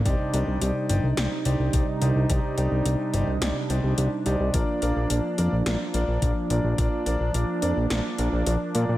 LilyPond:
<<
  \new Staff \with { instrumentName = "Grand piano" } { \time 4/4 \key c \minor \tempo 4 = 107 <ees' g' c'' d''>8 <ees' g' c'' d''>8 <ees' g' c'' d''>8 <ees' g' c'' d''>16 r16 <ees' g' c'' d''>8 <ees' g' c'' d''>8 <ees' g' c'' d''>8 <ees' g' c'' d''>8 | <ees' g' c'' d''>8 <ees' g' c'' d''>8 <ees' g' c'' d''>8 <ees' g' c'' d''>16 r16 <ees' g' c'' d''>8 <ees' g' c'' d''>8 <ees' g' c'' d''>8 <ees' g' c'' d''>8 | <d' f' bes' d''>8 <d' f' bes' d''>8 <d' f' bes' d''>8 <d' f' bes' d''>16 r16 <d' f' bes' d''>8 <d' f' bes' d''>8 <d' f' bes' d''>8 <d' f' bes' d''>8 | <d' f' bes' d''>8 <d' f' bes' d''>8 <d' f' bes' d''>8 <d' f' bes' d''>16 r16 <d' f' bes' d''>8 <d' f' bes' d''>8 <d' f' bes' d''>8 <d' f' bes' d''>8 | }
  \new Staff \with { instrumentName = "Analog synth pad" } { \clef bass \time 4/4 \key c \minor <c g d' ees'>1~ | <c g d' ees'>1 | <f bes>1~ | <f bes>1 | }
  \new Staff \with { instrumentName = "Analog synth bass" } { \clef bass \time 4/4 \key c \minor c,16 r16 c,16 c,16 c,16 r16 g,,16 c,16 c,16 r16 c,16 c,16 c,16 r16 c,16 c,16 | c,16 r16 c,16 c,16 c,16 r16 g,,16 c,16 c,16 r16 c,16 c,16 c,16 r16 c,16 c,16 | bes,,16 r16 bes,,16 bes,,16 bes,,16 r16 f,16 bes,,16 bes,,16 r16 bes,,16 bes,,16 bes,,16 r16 bes,,16 bes,,16 | bes,,16 r16 bes,,16 bes,,16 bes,,16 r16 f,16 bes,,16 bes,,16 r16 bes,,16 bes,,16 bes,,16 r16 bes,16 bes,16 | }
  \new DrumStaff \with { instrumentName = "Drums" } \drummode { \time 4/4 <hh bd>8 hh8 hh8 hh8 <hh sn>8 hh8 <hh bd>8 hh8 | <hh bd>8 hh8 hh8 hh8 <hh sn>8 hh8 hh8 hh8 | <hh bd>8 hh8 hh8 hh8 <hh sn>8 hh8 <hh bd>8 hh8 | <hh bd>8 hh8 hh8 hh8 <hh sn>8 hh8 hh8 hh8 | }
>>